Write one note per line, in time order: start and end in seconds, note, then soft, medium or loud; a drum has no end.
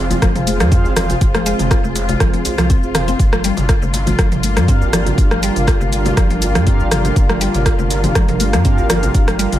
0.00 0.17 F1 medium
0.00 3.16 C3 medium
0.00 3.16 F3 medium
0.00 3.16 G#3 medium
0.00 0.69 C4 medium
0.00 0.69 F4 medium
0.00 9.59 F4 medium
0.00 0.69 G#4 medium
0.00 0.69 C5 medium
0.00 0.69 F5 medium
0.10 0.17 C3 medium
0.10 closed hi-hat soft
0.10 high conga medium
0.10 djembe tone medium
0.10 low conga medium
0.10 djembe bass medium
0.10 shaker soft
0.22 0.62 F1 loud
0.22 0.29 F3 medium
0.22 kick loud
0.22 cross-stick medium
0.22 closed hi-hat medium
0.22 high conga loud
0.22 djembe tone medium
0.22 shaker medium
0.35 0.46 F3 medium
0.35 closed hi-hat soft
0.35 mid tom medium
0.35 muted conga soft
0.35 shaker soft
0.47 open hi-hat medium
0.47 high conga loud
0.47 shaker loud
0.60 0.87 F2 medium
0.60 0.71 F3 loud
0.60 cross-stick medium
0.60 closed hi-hat soft
0.60 muted conga soft
0.60 djembe tone medium
0.60 shaker soft
0.72 0.94 C4 loud
0.72 0.84 C4 medium
0.72 0.94 F4 medium
0.72 0.94 G#4 medium
0.72 0.94 C5 medium
0.72 0.94 F5 loud
0.72 kick loud
0.72 closed hi-hat medium
0.72 shaker medium
0.84 1.16 F1 medium
0.84 muted conga soft
0.84 djembe tone medium
0.84 shaker soft
0.96 1.08 F3 medium
0.96 2.67 C4 medium
0.96 2.67 F4 medium
0.96 2.67 G#4 medium
0.96 2.67 C5 medium
0.96 2.67 F5 medium
0.96 cross-stick medium
0.96 open hi-hat medium
0.96 djembe tone loud
0.96 low conga loud
0.96 shaker medium
1.09 1.16 C3 medium
1.09 closed hi-hat soft
1.09 muted conga medium
1.09 djembe bass medium
1.09 shaker soft
1.21 1.53 F1 loud
1.21 kick loud
1.21 closed hi-hat medium
1.21 shaker medium
1.35 1.45 F3 medium
1.35 cross-stick medium
1.35 closed hi-hat soft
1.35 high conga loud
1.35 shaker soft
1.46 1.58 G#3 loud
1.46 open hi-hat medium
1.46 muted conga soft
1.46 shaker medium
1.59 1.77 F1 medium
1.59 closed hi-hat soft
1.59 mid tom medium
1.59 djembe slap medium
1.59 shaker soft
1.71 1.83 F4 loud
1.71 kick loud
1.71 cross-stick medium
1.71 closed hi-hat medium
1.71 muted conga soft
1.71 shaker medium
1.84 2.15 F1 medium
1.84 1.95 C3 medium
1.84 high conga medium
1.84 shaker soft
1.96 open hi-hat medium
1.96 djembe slap medium
1.96 muted conga soft
1.96 shaker medium
2.09 2.15 C3 medium
2.09 closed hi-hat soft
2.09 djembe tone medium
2.09 high conga loud
2.09 djembe bass medium
2.09 shaker soft
2.20 2.30 F1 loud
2.20 2.28 F3 loud
2.20 kick loud
2.20 cross-stick medium
2.20 closed hi-hat soft
2.20 shaker medium
2.34 2.44 F3 medium
2.34 closed hi-hat soft
2.34 muted conga soft
2.34 high conga medium
2.34 shaker soft
2.45 open hi-hat medium
2.45 djembe tone medium
2.45 djembe bass medium
2.45 shaker medium
2.58 2.76 C2 medium
2.58 2.65 F3 loud
2.58 cross-stick medium
2.58 closed hi-hat soft
2.58 muted conga medium
2.58 djembe tone medium
2.58 low conga medium
2.58 shaker soft
2.70 2.82 C4 medium
2.70 kick loud
2.70 closed hi-hat medium
2.70 shaker medium
2.83 3.14 F1 loud
2.83 3.18 C4 medium
2.83 3.18 F4 medium
2.83 3.18 G#4 medium
2.83 3.18 C5 medium
2.83 3.18 F5 loud
2.83 muted conga soft
2.83 shaker soft
2.95 3.07 F4 loud
2.95 cross-stick medium
2.95 open hi-hat medium
2.95 mid tom medium
2.95 low conga loud
2.95 shaker medium
3.08 3.18 C4 medium
3.08 closed hi-hat soft
3.08 muted conga medium
3.08 high conga medium
3.08 shaker soft
3.19 3.51 G1 loud
3.19 9.59 D3 medium
3.19 9.59 G3 medium
3.19 9.59 A#3 medium
3.19 kick loud
3.19 closed hi-hat medium
3.19 shaker soft
3.33 3.43 F3 medium
3.33 cross-stick medium
3.33 high conga loud
3.33 shaker soft
3.44 3.56 G3 loud
3.44 open hi-hat medium
3.44 muted conga soft
3.44 shaker medium
3.57 3.75 G1 medium
3.57 closed hi-hat soft
3.57 mid tom medium
3.57 djembe slap medium
3.57 shaker soft
3.69 3.81 F4 loud
3.69 kick loud
3.69 cross-stick medium
3.69 closed hi-hat medium
3.69 muted conga soft
3.69 shaker medium
3.82 4.14 G1 medium
3.82 3.93 C3 medium
3.82 high conga medium
3.82 shaker soft
3.93 open hi-hat medium
3.93 djembe slap medium
3.93 muted conga medium
3.93 shaker medium
4.06 4.14 C3 medium
4.06 closed hi-hat soft
4.06 djembe tone medium
4.06 high conga medium
4.06 djembe bass medium
4.06 low conga medium
4.06 shaker soft
4.19 4.58 G1 loud
4.19 4.26 F3 loud
4.19 kick loud
4.19 cross-stick medium
4.19 closed hi-hat medium
4.19 djembe tone medium
4.19 high conga medium
4.19 shaker soft
4.31 4.42 F3 medium
4.31 closed hi-hat soft
4.31 mid tom medium
4.31 muted conga soft
4.31 shaker soft
4.43 open hi-hat medium
4.43 high conga loud
4.43 shaker medium
4.56 4.83 G2 medium
4.56 4.68 F3 loud
4.56 cross-stick medium
4.56 closed hi-hat soft
4.56 muted conga medium
4.56 djembe tone medium
4.56 shaker soft
4.68 4.80 C4 medium
4.68 4.90 D4 loud
4.68 4.90 F4 medium
4.68 4.90 G4 medium
4.68 4.90 A#4 medium
4.68 4.90 F5 loud
4.68 kick loud
4.68 closed hi-hat medium
4.68 shaker soft
4.81 5.13 G1 medium
4.81 muted conga soft
4.81 djembe tone medium
4.81 shaker soft
4.93 5.05 F3 medium
4.93 6.64 D4 medium
4.93 6.64 F4 medium
4.93 6.64 G4 medium
4.93 6.64 A#4 medium
4.93 6.64 F5 medium
4.93 cross-stick medium
4.93 open hi-hat medium
4.93 djembe tone loud
4.93 low conga loud
4.93 shaker medium
5.06 5.13 C3 medium
5.06 closed hi-hat soft
5.06 muted conga soft
5.06 djembe bass medium
5.06 shaker soft
5.18 5.50 G1 loud
5.18 kick loud
5.18 closed hi-hat medium
5.18 shaker medium
5.31 5.42 F3 medium
5.31 cross-stick medium
5.31 high conga medium
5.31 shaker soft
5.42 5.55 G3 loud
5.42 open hi-hat medium
5.42 muted conga medium
5.42 shaker medium
5.56 5.73 G1 medium
5.56 closed hi-hat soft
5.56 mid tom medium
5.56 shaker soft
5.67 5.80 F4 loud
5.67 kick loud
5.67 cross-stick medium
5.67 closed hi-hat medium
5.67 muted conga soft
5.67 shaker medium
5.81 6.12 G1 medium
5.81 5.91 C3 medium
5.81 high conga medium
5.81 shaker soft
5.92 open hi-hat medium
5.92 muted conga medium
5.92 shaker medium
6.05 6.12 C3 medium
6.05 closed hi-hat soft
6.05 high conga medium
6.05 djembe tone medium
6.05 djembe bass medium
6.05 shaker soft
6.17 6.57 G1 loud
6.17 6.24 F3 loud
6.17 kick loud
6.17 cross-stick medium
6.17 closed hi-hat medium
6.17 shaker medium
6.30 6.41 F3 medium
6.30 closed hi-hat soft
6.30 muted conga soft
6.30 high conga medium
6.30 shaker soft
6.41 open hi-hat medium
6.41 djembe tone medium
6.41 djembe bass medium
6.41 shaker medium
6.55 6.82 G2 medium
6.55 6.66 F3 loud
6.55 cross-stick medium
6.55 closed hi-hat soft
6.55 muted conga medium
6.55 djembe tone medium
6.55 low conga medium
6.55 shaker soft
6.67 6.79 C4 medium
6.67 6.89 D4 loud
6.67 6.89 F4 medium
6.67 6.89 G4 medium
6.67 6.89 A#4 medium
6.67 6.89 F5 loud
6.67 kick loud
6.67 closed hi-hat medium
6.67 shaker soft
6.80 7.11 G1 medium
6.80 muted conga soft
6.80 shaker soft
6.91 7.04 F3 medium
6.91 8.62 D4 medium
6.91 8.62 F4 medium
6.91 8.62 G4 medium
6.91 8.62 A#4 medium
6.91 8.62 F5 medium
6.91 cross-stick medium
6.91 open hi-hat medium
6.91 mid tom medium
6.91 low conga medium
6.91 shaker medium
7.05 7.11 C3 medium
7.05 closed hi-hat soft
7.05 muted conga soft
7.05 high conga medium
7.05 shaker soft
7.16 7.48 G1 loud
7.16 kick loud
7.16 closed hi-hat medium
7.16 shaker soft
7.29 7.40 F3 medium
7.29 cross-stick medium
7.29 high conga loud
7.29 shaker soft
7.41 7.53 G3 loud
7.41 open hi-hat medium
7.41 muted conga medium
7.41 shaker medium
7.54 7.72 G1 medium
7.54 closed hi-hat soft
7.54 mid tom medium
7.54 djembe slap medium
7.54 shaker soft
7.66 7.78 F4 loud
7.66 kick loud
7.66 cross-stick medium
7.66 closed hi-hat medium
7.66 muted conga soft
7.66 shaker soft
7.79 8.10 G1 medium
7.79 7.90 C3 medium
7.79 high conga medium
7.79 shaker soft
7.90 open hi-hat medium
7.90 djembe slap medium
7.90 muted conga medium
7.90 shaker medium
8.04 8.10 C3 medium
8.04 closed hi-hat soft
8.04 djembe tone medium
8.04 high conga medium
8.04 low conga medium
8.04 djembe bass medium
8.04 shaker soft
8.15 8.55 G1 loud
8.15 8.23 F3 medium
8.15 kick loud
8.15 cross-stick medium
8.15 closed hi-hat medium
8.15 djembe tone medium
8.15 high conga medium
8.15 shaker medium
8.28 8.39 F3 medium
8.28 closed hi-hat soft
8.28 mid tom medium
8.28 muted conga soft
8.28 shaker soft
8.40 open hi-hat medium
8.40 high conga loud
8.40 shaker medium
8.53 8.80 G2 medium
8.53 8.65 F3 loud
8.53 cross-stick medium
8.53 closed hi-hat soft
8.53 muted conga medium
8.53 djembe tone medium
8.53 shaker soft
8.65 8.77 C4 medium
8.65 8.87 D4 loud
8.65 8.87 F4 medium
8.65 8.87 G4 loud
8.65 8.87 A#4 medium
8.65 8.87 F5 loud
8.65 kick loud
8.65 closed hi-hat medium
8.65 shaker soft
8.78 9.09 G1 medium
8.78 muted conga soft
8.78 djembe tone medium
8.78 shaker soft
8.89 9.02 F3 medium
8.89 9.59 D4 medium
8.89 9.59 F4 medium
8.89 9.59 G4 medium
8.89 9.59 A#4 medium
8.89 9.59 F5 medium
8.89 cross-stick medium
8.89 open hi-hat medium
8.89 djembe tone medium
8.89 low conga medium
8.89 shaker medium
9.03 9.09 C3 medium
9.03 closed hi-hat soft
9.03 muted conga soft
9.03 djembe bass medium
9.03 shaker soft
9.14 9.47 G1 loud
9.14 kick loud
9.14 closed hi-hat medium
9.14 shaker medium
9.28 9.38 F3 medium
9.28 cross-stick medium
9.28 closed hi-hat soft
9.28 high conga loud
9.28 shaker soft
9.39 9.51 G3 loud
9.39 open hi-hat medium
9.39 muted conga medium
9.39 shaker medium
9.52 9.59 G1 medium
9.52 closed hi-hat soft
9.52 mid tom medium
9.52 djembe slap medium
9.52 shaker soft